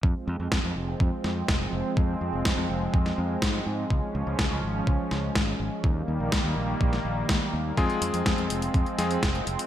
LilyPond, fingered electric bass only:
\new Staff \with { instrumentName = "Fingered electric bass" } { \clef bass \time 4/4 \key f \minor \tempo 4 = 124 f,16 r16 f,16 f,16 f,16 f,16 f,,16 r16 f,16 r16 f,16 r16 f,,16 r16 f,,16 r16 | f,16 r16 f,16 f,,16 f,16 f,16 f,,16 r16 f,16 r16 f,16 r16 aes,16 r16 aes,16 r16 | des,16 r16 des,16 des,16 des,16 des,16 aes,,16 r16 des,16 r16 des,16 r16 aes,,16 r16 aes,,16 r16 | ees,16 r16 ees,16 bes,,16 ees,16 ees,16 bes,,16 r16 bes,,16 r16 bes,,16 r16 ees,16 r16 ees,16 r16 |
f,16 r16 f,16 f,16 f,16 f,16 f,,16 r16 f,16 r16 f,16 r16 f,,16 r16 f,,16 r16 | }